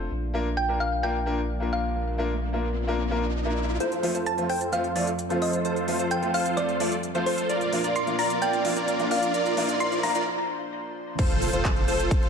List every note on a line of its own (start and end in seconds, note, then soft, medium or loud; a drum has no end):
0.00 3.76 D4 medium
0.11 3.78 A#1 medium
0.11 3.77 A#3 medium
0.11 3.77 F4 medium
0.11 riser medium
0.34 0.46 A#3 medium
0.34 0.46 D4 medium
0.34 0.47 F4 medium
0.34 0.47 A#4 medium
0.57 0.81 G5 loud
0.68 0.81 A#3 medium
0.68 0.81 D4 medium
0.68 0.81 F4 medium
0.68 0.81 A#4 medium
0.80 1.04 F5 loud
1.03 1.15 A#3 medium
1.03 1.16 D4 medium
1.03 1.16 F4 medium
1.03 1.16 A#4 medium
1.03 1.75 G5 loud
1.26 1.38 A#3 medium
1.26 1.39 D4 medium
1.26 1.39 F4 medium
1.26 1.39 A#4 medium
1.60 2.15 A#3 medium
1.60 2.16 D4 medium
1.60 2.16 F4 medium
1.60 2.17 A#4 medium
1.73 3.07 F5 medium
2.18 2.31 A#3 medium
2.18 2.31 D4 medium
2.18 2.31 F4 medium
2.18 2.31 A#4 medium
2.53 2.65 A#3 medium
2.53 2.66 D4 medium
2.53 2.66 F4 medium
2.53 2.66 A#4 medium
2.87 3.00 A#3 medium
2.87 3.00 D4 medium
2.87 3.00 F4 medium
2.87 3.01 A#4 medium
3.10 3.23 A#3 medium
3.10 3.23 D4 medium
3.10 3.23 F4 medium
3.10 3.24 A#4 medium
3.45 3.79 A#3 medium
3.45 3.79 D4 medium
3.45 3.79 F4 medium
3.45 3.79 A#4 medium
3.80 7.46 F2 medium
3.80 11.15 F3 medium
3.80 7.46 C4 medium
3.80 4.12 F4 medium
3.80 4.12 A4 medium
3.80 7.46 A4 medium
3.80 4.12 C5 loud
3.80 closed hi-hat soft
3.80 riser medium
3.80 cabasa medium
3.92 closed hi-hat soft
3.92 cabasa soft
4.03 4.15 F3 medium
4.03 4.16 A3 medium
4.03 4.16 C4 medium
4.03 4.16 F4 medium
4.03 open hi-hat loud
4.15 4.47 F4 medium
4.15 4.47 A4 medium
4.15 4.47 C5 medium
4.15 closed hi-hat medium
4.15 cabasa medium
4.26 4.50 A5 loud
4.26 closed hi-hat medium
4.26 cabasa medium
4.37 4.50 F3 medium
4.37 4.50 A3 medium
4.37 4.50 C4 medium
4.37 4.51 F4 medium
4.37 closed hi-hat soft
4.37 cabasa soft
4.49 4.93 F4 medium
4.49 4.93 A4 medium
4.49 4.93 C5 loud
4.49 4.60 G5 loud
4.49 open hi-hat medium
4.61 closed hi-hat medium
4.61 cabasa medium
4.72 4.85 F3 medium
4.72 4.85 A3 medium
4.72 4.85 C4 medium
4.72 4.85 F4 medium
4.72 5.38 F5 medium
4.72 closed hi-hat medium
4.72 cabasa medium
4.84 closed hi-hat soft
4.84 cabasa soft
4.95 5.08 F3 medium
4.95 5.08 A3 medium
4.95 5.08 C4 medium
4.95 5.11 F4 loud
4.95 5.08 F4 medium
4.95 5.11 A4 medium
4.95 5.11 D5 loud
4.95 open hi-hat loud
5.07 closed hi-hat medium
5.07 cabasa medium
5.19 closed hi-hat medium
5.19 cabasa medium
5.29 5.85 F3 medium
5.29 5.85 A3 medium
5.29 5.85 C4 medium
5.29 5.62 F4 medium
5.29 5.86 F4 medium
5.29 5.62 A4 medium
5.29 5.62 C5 medium
5.29 closed hi-hat soft
5.29 cabasa soft
5.42 5.63 D#5 medium
5.42 open hi-hat medium
5.53 closed hi-hat medium
5.53 cabasa medium
5.65 5.97 F4 medium
5.65 5.97 A4 medium
5.65 5.97 C5 loud
5.65 closed hi-hat soft
5.65 cabasa soft
5.76 closed hi-hat soft
5.76 cabasa soft
5.88 6.00 F3 medium
5.88 6.00 A3 medium
5.88 6.00 C4 medium
5.88 6.01 F4 medium
5.88 open hi-hat loud
5.99 6.31 F4 medium
5.99 6.31 A4 medium
5.99 6.31 C5 medium
5.99 closed hi-hat medium
5.99 cabasa medium
6.11 6.35 G5 loud
6.11 closed hi-hat medium
6.11 cabasa medium
6.22 6.35 F3 medium
6.22 6.35 A3 medium
6.22 6.35 C4 medium
6.22 6.35 F4 medium
6.22 closed hi-hat soft
6.22 cabasa soft
6.34 6.78 F4 medium
6.34 6.78 A4 medium
6.34 6.78 C5 loud
6.34 6.78 C5 medium
6.34 6.45 F5 loud
6.34 open hi-hat medium
6.46 closed hi-hat medium
6.46 cabasa medium
6.57 6.69 F3 medium
6.57 6.69 A3 medium
6.57 6.70 C4 medium
6.57 6.70 F4 medium
6.57 7.28 D5 loud
6.57 closed hi-hat medium
6.57 cabasa medium
6.69 closed hi-hat soft
6.69 cabasa soft
6.80 6.92 F3 medium
6.80 6.93 A3 medium
6.80 6.93 C4 medium
6.80 6.96 F4 loud
6.80 6.93 F4 medium
6.80 6.96 A4 medium
6.80 6.96 D5 loud
6.80 open hi-hat loud
6.92 closed hi-hat medium
6.92 cabasa medium
7.03 closed hi-hat medium
7.03 cabasa medium
7.14 7.48 F3 medium
7.14 7.48 A3 medium
7.14 7.48 C4 medium
7.14 7.47 F4 medium
7.14 7.48 F4 medium
7.14 7.47 A4 medium
7.14 7.47 C5 medium
7.14 closed hi-hat soft
7.14 cabasa soft
7.26 7.37 C5 medium
7.26 open hi-hat medium
7.38 closed hi-hat medium
7.38 cabasa medium
7.49 11.15 A#2 medium
7.49 11.15 D4 medium
7.49 7.81 F4 medium
7.49 9.32 A#4 medium
7.49 7.81 A#4 medium
7.49 7.81 D5 loud
7.49 closed hi-hat soft
7.49 cabasa soft
7.61 closed hi-hat soft
7.61 cabasa soft
7.72 7.85 F3 medium
7.72 7.85 A#3 medium
7.72 7.85 D4 medium
7.72 7.85 F4 medium
7.72 open hi-hat loud
7.84 8.16 F4 medium
7.84 8.16 A#4 medium
7.84 8.16 D5 medium
7.84 closed hi-hat medium
7.84 cabasa medium
7.96 8.19 C6 loud
7.96 closed hi-hat medium
7.96 cabasa medium
8.07 8.19 F3 medium
8.07 8.19 A#3 medium
8.07 8.20 D4 medium
8.07 8.20 F4 medium
8.07 closed hi-hat soft
8.07 cabasa soft
8.19 8.40 F4 medium
8.19 8.40 A#4 medium
8.19 8.40 D5 medium
8.19 8.43 A#5 loud
8.19 open hi-hat loud
8.30 closed hi-hat medium
8.30 cabasa medium
8.42 8.74 F4 medium
8.42 8.74 A#4 medium
8.42 8.74 D5 loud
8.42 9.13 G5 loud
8.42 closed hi-hat medium
8.42 cabasa medium
8.53 closed hi-hat soft
8.53 cabasa soft
8.64 8.77 F3 medium
8.64 8.77 A#3 medium
8.64 8.77 D4 medium
8.64 8.78 F4 medium
8.64 open hi-hat loud
8.76 9.08 F4 medium
8.76 9.08 A#4 medium
8.76 9.08 D5 medium
8.76 closed hi-hat medium
8.76 cabasa medium
8.88 closed hi-hat medium
8.88 cabasa medium
8.99 9.12 F3 medium
8.99 9.12 A#3 medium
8.99 9.12 D4 medium
8.99 9.12 F4 medium
8.99 closed hi-hat soft
8.99 cabasa soft
9.11 9.32 F4 medium
9.11 9.32 A#4 medium
9.11 9.32 D5 loud
9.11 9.22 F5 medium
9.11 open hi-hat loud
9.23 closed hi-hat soft
9.23 cabasa medium
9.34 9.66 F4 medium
9.34 9.66 A#4 medium
9.34 11.17 C5 medium
9.34 9.66 D5 loud
9.34 closed hi-hat soft
9.34 cabasa medium
9.46 closed hi-hat soft
9.46 cabasa soft
9.56 9.69 F3 medium
9.56 9.69 A#3 medium
9.56 9.70 D4 medium
9.56 9.70 F4 loud
9.56 open hi-hat loud
9.69 9.78 F4 medium
9.69 9.78 A#4 medium
9.69 9.78 D5 medium
9.69 closed hi-hat medium
9.69 cabasa medium
9.80 10.12 F4 loud
9.80 10.12 A#4 medium
9.80 10.12 D5 loud
9.80 10.04 C6 loud
9.80 closed hi-hat medium
9.80 cabasa medium
9.92 closed hi-hat soft
9.92 cabasa soft
10.03 10.15 F3 medium
10.03 10.15 A#3 medium
10.03 10.16 D4 medium
10.03 10.16 F4 medium
10.03 10.25 A#5 loud
10.03 open hi-hat loud
10.15 10.25 F4 medium
10.15 10.25 A#4 medium
10.15 10.25 D5 medium
10.15 closed hi-hat medium
10.15 cabasa medium
11.19 11.51 F1 loud
11.19 12.29 A3 medium
11.19 12.29 C4 medium
11.19 11.51 F4 loud
11.19 12.29 F4 medium
11.19 11.51 A4 medium
11.19 11.51 C5 loud
11.19 kick loud
11.19 closed hi-hat medium
11.19 crash loud
11.19 impact medium
11.19 cabasa soft
11.30 closed hi-hat soft
11.42 open hi-hat loud
11.42 cabasa medium
11.53 11.86 F1 loud
11.53 11.85 F4 medium
11.53 11.85 A4 medium
11.53 11.85 C5 medium
11.53 11.85 C5 loud
11.53 closed hi-hat medium
11.53 cabasa soft
11.65 kick loud
11.65 clap loud
11.65 closed hi-hat medium
11.65 cabasa soft
11.76 closed hi-hat soft
11.88 12.29 F1 medium
11.88 12.29 F4 medium
11.88 12.29 A4 medium
11.88 12.29 C5 loud
11.88 open hi-hat medium
11.88 cabasa medium
12.00 closed hi-hat medium
12.00 cabasa soft
12.11 kick loud
12.11 closed hi-hat medium
12.11 cabasa soft
12.23 closed hi-hat soft